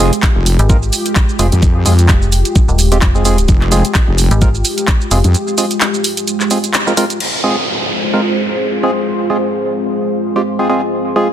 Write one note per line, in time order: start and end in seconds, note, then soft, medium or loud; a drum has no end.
0.00 0.11 F1 loud
0.00 0.12 G#3 loud
0.00 7.17 G#3 medium
0.00 0.12 C4 medium
0.00 0.12 F4 medium
0.00 7.17 F4 medium
0.00 7.19 G4 loud
0.00 0.12 G#4 loud
0.00 open hi-hat loud
0.00 shaker medium
0.13 closed hi-hat medium
0.13 shaker soft
0.23 kick loud
0.23 clap loud
0.23 closed hi-hat soft
0.23 shaker soft
0.36 0.57 F1 medium
0.46 open hi-hat loud
0.46 shaker medium
0.59 0.91 G#1 medium
0.59 closed hi-hat medium
0.59 shaker soft
0.69 0.77 G#3 medium
0.69 0.77 C4 medium
0.69 0.77 F4 medium
0.69 0.77 A#4 loud
0.69 kick loud
0.69 closed hi-hat medium
0.69 shaker soft
0.83 shaker soft
0.93 open hi-hat loud
0.93 shaker medium
1.06 closed hi-hat medium
1.06 shaker soft
1.15 kick loud
1.15 clap loud
1.15 closed hi-hat medium
1.15 shaker soft
1.29 shaker soft
1.39 1.50 F1 loud
1.39 1.47 G#3 loud
1.39 1.47 C4 medium
1.39 1.47 F4 medium
1.39 1.47 G#4 loud
1.39 open hi-hat loud
1.39 shaker medium
1.52 1.84 F2 loud
1.52 closed hi-hat medium
1.52 shaker soft
1.62 kick loud
1.62 closed hi-hat medium
1.62 shaker soft
1.86 2.07 F2 loud
1.86 1.93 G#3 medium
1.86 1.93 C4 medium
1.86 1.93 F4 medium
1.86 1.93 G#4 medium
1.86 open hi-hat loud
1.86 shaker medium
1.99 closed hi-hat medium
1.99 shaker soft
2.09 2.43 F1 medium
2.09 kick loud
2.09 clap loud
2.09 closed hi-hat medium
2.09 shaker soft
2.22 shaker soft
2.32 open hi-hat loud
2.32 shaker medium
2.45 closed hi-hat medium
2.45 shaker soft
2.55 kick loud
2.55 closed hi-hat medium
2.55 shaker soft
2.68 3.00 D#1 loud
2.68 shaker soft
2.79 open hi-hat loud
2.79 shaker medium
2.92 2.98 G#3 medium
2.92 2.98 C4 medium
2.92 2.98 F4 medium
2.92 2.98 G4 medium
2.92 closed hi-hat medium
2.92 shaker soft
3.02 3.47 F1 loud
3.02 kick loud
3.02 clap loud
3.02 closed hi-hat medium
3.02 shaker soft
3.15 3.24 G#3 medium
3.15 3.24 C4 medium
3.15 3.24 F4 medium
3.15 3.24 G#4 medium
3.15 shaker soft
3.25 3.37 G#3 medium
3.25 3.37 C4 medium
3.25 3.37 F4 medium
3.25 3.37 G#4 loud
3.25 open hi-hat loud
3.25 shaker medium
3.38 closed hi-hat medium
3.38 shaker soft
3.48 3.83 F1 loud
3.48 kick loud
3.48 closed hi-hat medium
3.48 shaker medium
3.61 clap soft
3.72 3.84 G#3 loud
3.72 3.84 C4 medium
3.72 3.84 F4 medium
3.72 3.84 G#4 loud
3.72 open hi-hat loud
3.72 shaker medium
3.85 closed hi-hat medium
3.85 shaker soft
3.95 kick loud
3.95 clap loud
3.95 closed hi-hat medium
3.95 shaker soft
4.08 4.29 F1 loud
4.18 open hi-hat loud
4.18 shaker medium
4.31 4.63 G#1 loud
4.31 closed hi-hat medium
4.31 shaker soft
4.41 4.49 G#3 medium
4.41 4.49 C4 medium
4.41 4.49 F4 medium
4.41 4.49 A#4 loud
4.41 kick loud
4.41 closed hi-hat medium
4.41 shaker medium
4.55 shaker soft
4.65 open hi-hat loud
4.65 shaker medium
4.78 closed hi-hat medium
4.78 shaker soft
4.88 kick loud
4.88 clap loud
4.88 closed hi-hat medium
4.88 shaker medium
5.01 shaker soft
5.11 5.22 F1 loud
5.11 5.19 G#3 loud
5.11 5.19 C4 medium
5.11 5.19 F4 medium
5.11 5.19 G#4 loud
5.11 open hi-hat loud
5.11 shaker medium
5.24 5.35 F2 loud
5.24 closed hi-hat medium
5.24 shaker soft
5.34 closed hi-hat medium
5.34 shaker soft
5.48 shaker soft
5.58 5.65 G#3 medium
5.58 5.65 C4 medium
5.58 5.65 F4 medium
5.58 5.65 G#4 medium
5.58 open hi-hat loud
5.58 shaker medium
5.71 closed hi-hat medium
5.71 shaker soft
5.81 clap loud
5.81 closed hi-hat medium
5.81 shaker soft
5.94 shaker soft
6.04 open hi-hat loud
6.04 shaker medium
6.17 closed hi-hat medium
6.17 shaker soft
6.28 closed hi-hat medium
6.28 shaker soft
6.40 clap soft
6.40 shaker soft
6.51 6.58 G#3 medium
6.51 6.58 C4 medium
6.51 6.58 F4 medium
6.51 6.58 G#4 loud
6.51 open hi-hat loud
6.51 shaker medium
6.64 closed hi-hat medium
6.64 shaker soft
6.74 clap loud
6.74 closed hi-hat medium
6.74 shaker soft
6.87 6.93 G#3 medium
6.87 6.93 C4 medium
6.87 6.93 F4 medium
6.87 6.93 A#4 medium
6.87 shaker soft
6.97 7.05 G#3 loud
6.97 7.05 C4 medium
6.97 7.05 F4 medium
6.97 7.05 A#4 loud
6.97 open hi-hat loud
6.97 shaker medium
7.10 closed hi-hat medium
7.10 shaker soft
7.20 11.33 G#3 medium
7.20 11.33 C4 medium
7.20 11.33 F4 medium
7.20 11.33 C5 medium
7.20 crash medium
7.20 downlifter medium
7.44 7.56 G#3 medium
7.44 7.56 C4 medium
7.44 7.56 F4 medium
7.44 7.56 G#4 loud
7.53 11.33 G#4 medium
8.04 11.33 C6 medium
8.14 8.21 G#3 medium
8.14 8.21 C4 medium
8.14 8.21 F4 medium
8.14 8.21 A#4 medium
8.14 11.33 F5 medium
8.83 8.91 G#3 medium
8.83 8.91 C4 medium
8.83 8.91 F4 medium
8.83 8.91 G#4 loud
9.30 9.37 G#3 medium
9.30 9.37 C4 medium
9.30 9.37 F4 medium
9.30 9.37 G#4 medium
10.36 10.42 G#3 medium
10.36 10.42 C4 medium
10.36 10.42 F4 medium
10.36 10.42 G4 medium
10.59 10.68 G#3 medium
10.59 10.68 C4 medium
10.59 10.68 F4 medium
10.59 10.68 G#4 medium
10.69 10.81 G#3 medium
10.69 10.81 C4 medium
10.69 10.81 F4 medium
10.69 10.81 G#4 loud
11.16 11.28 G#3 medium
11.16 11.28 C4 medium
11.16 11.28 F4 medium
11.16 11.28 G#4 loud